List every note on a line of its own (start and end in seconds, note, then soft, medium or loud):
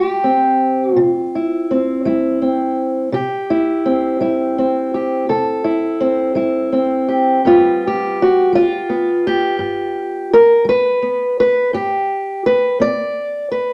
0.00 0.53 G3 medium
0.00 0.06 F#4 medium
0.06 0.86 G4 medium
0.24 1.68 C4 soft
0.86 0.98 F#4 medium
0.96 1.61 C3 medium
0.96 1.41 F4 medium
1.35 2.05 E4 soft
1.71 2.41 C4 soft
2.05 2.70 G3 medium
2.05 3.09 E4 soft
2.42 3.09 C4 soft
3.12 3.77 C3 medium
3.12 4.94 G4 medium
3.50 4.20 E4 medium
3.86 4.57 C4 soft
4.21 4.85 G3 medium
4.21 5.63 E4 medium
4.58 5.99 C4 soft
4.94 5.29 G4 medium
5.29 5.93 C3 medium
5.29 7.08 A4 medium
5.64 6.35 E4 medium
6.00 6.71 C4 medium
6.35 7.00 G3 medium
6.35 7.39 E4 medium
6.72 7.39 C4 soft
7.08 7.87 G4 medium
7.45 8.09 G2 medium
7.45 8.52 G3 soft
7.45 8.89 B3 medium
7.45 8.17 F4 medium
7.87 8.91 G4 medium
8.22 8.54 F#4 medium
8.53 9.16 G3 medium
8.53 9.96 F4 medium
8.89 11.01 B3 soft
9.27 10.32 G4 medium
9.59 10.23 G2 medium
10.33 10.67 A#4 loud
10.65 11.29 G3 medium
10.69 11.39 B4 loud
11.02 11.69 B3 soft
11.40 11.74 B4 medium
11.73 12.37 G2 medium
11.73 12.45 G4 medium
12.46 12.81 B4 medium
12.80 13.44 B3 medium
12.80 13.51 D5 loud
13.52 13.73 B4 medium